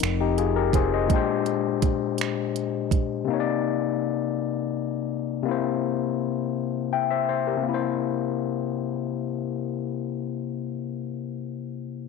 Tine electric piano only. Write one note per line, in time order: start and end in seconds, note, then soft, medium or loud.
0.00 1.04 F3 medium
0.00 1.06 C4 medium
0.00 0.21 D#4 medium
0.00 0.56 A#4 medium
0.20 0.37 D#4 soft
0.20 0.37 G4 medium
0.38 0.55 F4 soft
0.38 0.55 G#4 medium
0.56 0.73 G4 soft
0.56 0.73 A#4 medium
0.75 0.92 G#4 medium
0.75 0.91 C5 medium
0.94 1.15 C5 soft
0.94 1.27 D#5 medium
1.07 3.22 A#2 medium
1.07 3.23 G#3 medium
1.11 3.25 D4 medium
1.11 3.26 G4 medium
1.16 3.27 C5 medium
3.25 5.40 C3 medium
3.25 5.42 A#3 medium
3.30 5.43 D#4 medium
3.30 3.37 C#5 medium
3.40 5.48 D5 medium
5.43 7.56 C3 medium
5.43 7.60 A#3 medium
5.48 7.61 E4 medium
5.48 6.91 C5 medium
6.93 7.09 E5 soft
6.93 7.09 G5 soft
7.11 7.28 C5 soft
7.11 7.27 E5 medium
7.29 7.46 C5 medium
7.47 7.81 G4 soft
7.47 7.81 A#4 soft
7.57 10.54 C3 medium
7.62 10.59 A#3 medium
7.69 10.65 E4 medium
7.74 10.71 C5 medium